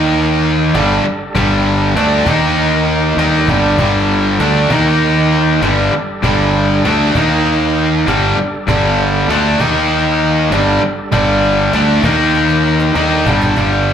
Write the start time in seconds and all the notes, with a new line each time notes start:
Already playing: D#2 D#3 A#3 D#4 A#4 F5
0.14 cajon slap
0.44 cajon slap
0.74 G1 G2 D3 G3 D4 A4, cajon slap
1.04 muted fingered electric bass stroke, muted overdriven electric guitar stroke, muted distorted electric guitar stroke, cajon slap
1.35 G1 G2 D3 G3, cajon bass
1.66 cajon slap
1.95 D2 D3 A3 D4, cajon slap
2.26 D#2 D#3 A#3 D#4 A#4 F5, cajon bass
2.57 cajon slap
2.87 cajon slap
3.17 D#2 D#3 G3 A#3 D4 D#4 A4, cajon slap
3.48 G1 G2 D3 G3, cajon bass
3.78 G1 G2 D3 G3, cajon bass
4.39 D2 D3 A3 D4, cajon slap
4.69 D#2 D#3 A#3 D#4 A#4 F5, cajon bass
5.61 G1 G2 D3 G3 D4 A4, cajon slap
5.92 muted distorted electric guitar stroke, muted overdriven electric guitar stroke, muted fingered electric bass stroke, cajon slap
6.23 G1 G2 D3 G3, cajon bass
6.54 cajon slap
6.85 D2 D3 A3 D4, cajon slap
7.15 D#2 D#3 A#3 D#4 A#4 F5, cajon bass
7.45 cajon slap
7.77 cajon slap
8.06 G1 G2 D3 G3 D4 A4, cajon slap
8.37 muted fingered electric bass stroke, muted distorted electric guitar stroke, muted overdriven electric guitar stroke, cajon slap
8.54 cajon slap
8.67 G1 G2 D3 G3, cajon bass
8.99 cajon slap
9.28 D2 D3 A3 D4, cajon slap
9.60 D#2 D#3 A#3 D#4 A#4 F5, cajon bass
9.91 cajon slap
10.51 G1 G2 D3 G3 D4 A4, cajon slap
10.81 muted distorted electric guitar stroke, muted overdriven electric guitar stroke, muted fingered electric bass stroke, cajon slap
11.12 G1 G2 D3 G3, cajon bass
11.43 cajon slap
11.73 D2 D3 A3 D4, cajon slap
12.03 D#2 D#3 A#3 D#4 A#4 F5, cajon bass
12.34 cajon slap
12.50 cajon slap
12.65 cajon slap
12.80 cajon slap
12.95 D#2 D#3 G3 A#3 D4 D#4 A4, cajon slap
13.26 G1 G2 D3 G3, cajon bass
13.42 cajon bass
13.57 G1 G2 D3 G3, cajon bass